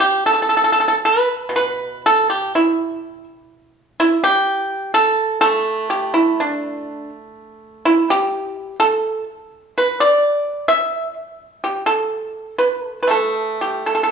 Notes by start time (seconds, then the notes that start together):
0.00 G4
0.26 A4
0.34 A4
0.42 A4
0.49 A4
0.57 A4
0.64 A4
0.72 A4
0.80 A4
0.88 A4
1.05 B4
1.49 B2
1.56 B4
2.06 A4
2.30 G4
2.55 E4
4.00 E4
4.24 G4
4.94 A4
5.41 A3 A4
5.90 G4
6.14 E4
6.40 D4
7.85 E4
8.10 G4
8.80 A4
9.78 B4
10.00 D5
10.68 E5
11.64 G4
11.86 A4
12.58 B4
12.84 A4
13.03 B4
13.07 A3 A4
13.61 G4
13.86 A4
13.95 A4
14.03 A4